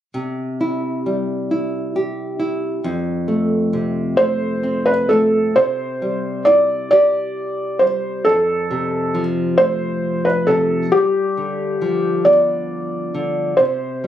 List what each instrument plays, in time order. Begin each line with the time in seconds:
0.14 nylon-string guitar C3
0.61 nylon-string guitar E4
1.06 nylon-string guitar G3
1.51 nylon-string guitar E4
1.96 nylon-string guitar G4
2.40 nylon-string guitar E4
2.84 nylon-string guitar F2
3.28 nylon-string guitar A3
3.73 nylon-string guitar C3
4.17 nylon-string guitar A3, felt piano C5
4.63 nylon-string guitar C4
4.86 felt piano B4
5.09 nylon-string guitar A3, felt piano A4
5.56 nylon-string guitar C3, felt piano C5
6.02 nylon-string guitar G3
6.45 nylon-string guitar E4, felt piano D5
6.91 nylon-string guitar G4, felt piano D5
7.79 nylon-string guitar G3, felt piano C5
8.25 nylon-string guitar F2, felt piano A4
8.71 nylon-string guitar C3
9.15 nylon-string guitar F3
9.58 nylon-string guitar A3, felt piano C5
10.25 felt piano B4
10.47 nylon-string guitar C3, felt piano A4
10.92 nylon-string guitar G2, felt piano G4
11.37 nylon-string guitar D3
11.82 nylon-string guitar F3
12.25 nylon-string guitar B3, felt piano D5
13.15 nylon-string guitar D3
13.57 nylon-string guitar C3, felt piano C5
14.04 nylon-string guitar G3